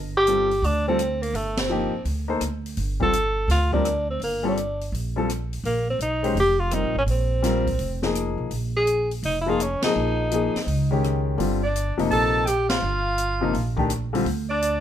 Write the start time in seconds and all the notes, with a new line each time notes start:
Already playing: G1
0.17 G4
0.27 G3 C4 F4 A4, closed hi-hat
0.51 open hi-hat
0.62 D2 D4, open hi-hat
0.88 G3 C4 F4 A4
0.99 cross-stick, closed hi-hat
1.22 A#3, open hi-hat
1.33 G1 A3, open hi-hat
1.57 C4, snare, ride
1.69 F3 A#3 D#4 G4
1.93 muted upright bass stroke
2.05 D2, open hi-hat
2.28 A#3 D#4 A4 C5
2.41 D2, cross-stick, closed hi-hat
2.66 open hi-hat
2.77 G1, open hi-hat
3.00 G3 C4 F4 A4, kick
3.13 closed hi-hat
3.48 D2 F4, snare, open hi-hat
3.72 G3 C4 D4 F4 A#4, kick
3.85 cross-stick, closed hi-hat
4.10 C4
4.20 G1 A#3, open hi-hat
4.43 G3 C4 F4 A4
4.48 D4
4.57 closed hi-hat
4.81 open hi-hat
4.92 A#1, open hi-hat
5.16 G3 C4 F4 A4
5.29 cross-stick, closed hi-hat
5.53 open hi-hat
5.64 A#1 A#3, open hi-hat
5.90 C4
5.99 B1 D#4, closed hi-hat
6.23 G#3 C#4 G4 C5, open hi-hat
6.35 F1, open hi-hat
6.40 G4
6.60 F4
6.71 G3 C4 D#4 F4 A#4, cross-stick, closed hi-hat
6.83 A#1
6.95 G#1 C#4
7.06 A#1, open hi-hat
7.11 C4
7.42 G3 C4 F4 A#4, snare, closed hi-hat
7.67 kick, open hi-hat
7.79 F1, open hi-hat
8.02 F3 A#3 D#4 G#4, snare
8.15 cross-stick, closed hi-hat
8.38 B1
8.51 A#1, open hi-hat
8.76 G#4
8.87 closed hi-hat
9.11 open hi-hat
9.23 F1 D#4, open hi-hat
9.41 E4
9.46 F3 A#3 D#4 F4 G#4
9.60 C#4, cross-stick, closed hi-hat
9.82 F3 A#3 D#4 G#4, muted upright bass stroke, snare, ride
9.95 A#1
10.31 F3 A#3 D#4 G#4, closed hi-hat
10.55 muted upright bass stroke, snare, open hi-hat
10.66 C#2, open hi-hat
10.91 D#3 G#3 C#4 G4
11.04 cross-stick, closed hi-hat
11.38 G1 D3 G3 C4 F4, open hi-hat
11.63 D4 D5
11.76 closed hi-hat
11.98 F1 C3 F3 A#3 D#4, open hi-hat
12.10 A#1 A4 A5, open hi-hat
12.45 G4 G5, cross-stick, closed hi-hat
12.69 F4 F5, snare, ride
12.82 G1
13.18 closed hi-hat
13.41 C3 F3 A#3 D#4
13.53 A#1, open hi-hat
13.76 D#3 A3 D4 G4, kick
13.90 cross-stick, closed hi-hat
14.13 D3 G3 C4 F4, open hi-hat
14.25 D2, open hi-hat
14.49 D4 D5
14.62 closed hi-hat